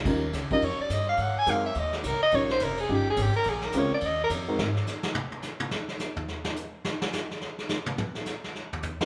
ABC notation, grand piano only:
X:1
M:4/4
L:1/8
Q:"Swing" 1/4=212
K:Ebmix
V:1 name="Grand piano"
[G,DEFB] z2 [G,DEFB] z4 | z2 [A,CE_GB] z4 z | [G,DEFB] z3 [G,DEFG] z3 | z2 [A,CDFB] z4 [A,CE_GB] |
z8 | z8 | z8 | z6 z [A,CEFB] |]